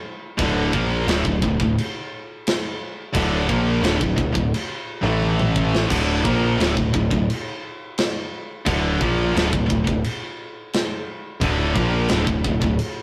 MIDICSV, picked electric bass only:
0, 0, Header, 1, 2, 480
1, 0, Start_track
1, 0, Key_signature, -1, "minor"
1, 0, Tempo, 688863
1, 264, Time_signature, 4, 2, 24, 8
1, 9076, End_track
2, 0, Start_track
2, 0, Title_t, "Picked electric bass"
2, 0, Program_c, 0, 34
2, 270, Note_on_c, 0, 26, 100
2, 492, Note_off_c, 0, 26, 0
2, 511, Note_on_c, 0, 34, 102
2, 733, Note_off_c, 0, 34, 0
2, 742, Note_on_c, 0, 26, 96
2, 856, Note_off_c, 0, 26, 0
2, 873, Note_on_c, 0, 26, 79
2, 982, Note_off_c, 0, 26, 0
2, 988, Note_on_c, 0, 26, 85
2, 1100, Note_off_c, 0, 26, 0
2, 1114, Note_on_c, 0, 26, 82
2, 1223, Note_off_c, 0, 26, 0
2, 2197, Note_on_c, 0, 26, 93
2, 2418, Note_off_c, 0, 26, 0
2, 2432, Note_on_c, 0, 34, 100
2, 2652, Note_off_c, 0, 34, 0
2, 2656, Note_on_c, 0, 26, 92
2, 2775, Note_off_c, 0, 26, 0
2, 2791, Note_on_c, 0, 26, 79
2, 2903, Note_off_c, 0, 26, 0
2, 2910, Note_on_c, 0, 26, 78
2, 3023, Note_off_c, 0, 26, 0
2, 3031, Note_on_c, 0, 26, 81
2, 3143, Note_off_c, 0, 26, 0
2, 3505, Note_on_c, 0, 33, 97
2, 4081, Note_off_c, 0, 33, 0
2, 4114, Note_on_c, 0, 26, 91
2, 4336, Note_off_c, 0, 26, 0
2, 4354, Note_on_c, 0, 34, 106
2, 4576, Note_off_c, 0, 34, 0
2, 4590, Note_on_c, 0, 26, 93
2, 4703, Note_off_c, 0, 26, 0
2, 4836, Note_on_c, 0, 26, 77
2, 4946, Note_off_c, 0, 26, 0
2, 4954, Note_on_c, 0, 26, 84
2, 5064, Note_off_c, 0, 26, 0
2, 6037, Note_on_c, 0, 26, 94
2, 6256, Note_off_c, 0, 26, 0
2, 6274, Note_on_c, 0, 34, 99
2, 6495, Note_off_c, 0, 34, 0
2, 6516, Note_on_c, 0, 26, 92
2, 6624, Note_off_c, 0, 26, 0
2, 6640, Note_on_c, 0, 26, 82
2, 6746, Note_off_c, 0, 26, 0
2, 6760, Note_on_c, 0, 26, 79
2, 6866, Note_off_c, 0, 26, 0
2, 6877, Note_on_c, 0, 26, 86
2, 6984, Note_off_c, 0, 26, 0
2, 7949, Note_on_c, 0, 26, 90
2, 8170, Note_off_c, 0, 26, 0
2, 8190, Note_on_c, 0, 34, 104
2, 8411, Note_off_c, 0, 34, 0
2, 8441, Note_on_c, 0, 26, 98
2, 8545, Note_off_c, 0, 26, 0
2, 8553, Note_on_c, 0, 26, 78
2, 8661, Note_off_c, 0, 26, 0
2, 8670, Note_on_c, 0, 26, 81
2, 8779, Note_off_c, 0, 26, 0
2, 8793, Note_on_c, 0, 26, 91
2, 8901, Note_off_c, 0, 26, 0
2, 9076, End_track
0, 0, End_of_file